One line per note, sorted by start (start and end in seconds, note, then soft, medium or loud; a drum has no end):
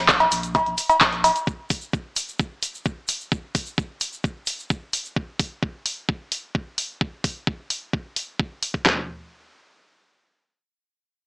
0.00 0.26 A#1 medium
0.08 kick loud
0.08 snare loud
0.08 clap loud
0.08 closed hi-hat medium
0.08 closed hi-hat soft
0.08 shaker soft
0.20 closed hi-hat soft
0.20 cowbell medium
0.32 0.60 A#1 loud
0.32 closed hi-hat medium
0.32 open hi-hat loud
0.32 shaker medium
0.43 closed hi-hat soft
0.43 shaker soft
0.55 kick loud
0.55 closed hi-hat soft
0.55 closed hi-hat medium
0.55 cowbell medium
0.55 shaker soft
0.66 0.74 A#1 medium
0.66 closed hi-hat soft
0.78 closed hi-hat medium
0.78 open hi-hat loud
0.78 shaker loud
0.89 closed hi-hat soft
0.89 cowbell medium
0.89 shaker soft
1.01 1.29 A#1 medium
1.01 kick loud
1.01 snare loud
1.01 clap loud
1.01 closed hi-hat soft
1.01 closed hi-hat medium
1.01 shaker soft
1.13 closed hi-hat soft
1.24 closed hi-hat medium
1.24 open hi-hat loud
1.24 cowbell medium
1.24 shaker medium
1.36 closed hi-hat soft
1.36 shaker soft
1.47 kick loud
1.47 shaker soft
1.70 kick medium
1.70 open hi-hat loud
1.70 shaker medium
1.81 shaker soft
1.93 kick loud
1.93 shaker soft
2.16 open hi-hat loud
2.16 shaker medium
2.28 shaker soft
2.39 kick loud
2.39 shaker soft
2.63 open hi-hat loud
2.63 shaker medium
2.75 shaker soft
2.85 kick loud
2.85 shaker soft
3.08 open hi-hat loud
3.08 shaker medium
3.21 shaker soft
3.32 kick loud
3.32 shaker soft
3.55 kick medium
3.55 open hi-hat medium
3.55 shaker medium
3.66 shaker soft
3.78 kick loud
3.78 shaker soft
4.01 open hi-hat medium
4.01 shaker medium
4.13 shaker soft
4.24 kick loud
4.24 shaker soft
4.47 open hi-hat loud
4.47 shaker medium
4.59 shaker soft
4.70 kick loud
4.70 shaker soft
4.93 open hi-hat loud
4.93 shaker medium
5.05 shaker soft
5.16 kick loud
5.39 kick medium
5.39 open hi-hat medium
5.63 kick loud
5.86 open hi-hat medium
6.09 kick loud
6.32 open hi-hat medium
6.55 kick loud
6.78 open hi-hat medium
7.01 kick loud
7.24 kick medium
7.24 open hi-hat medium
7.47 kick loud
7.70 open hi-hat medium
7.93 kick loud
8.16 open hi-hat medium
8.39 kick loud
8.63 open hi-hat medium
8.74 kick medium
8.86 snare medium
8.86 clap medium
8.86 floor tom medium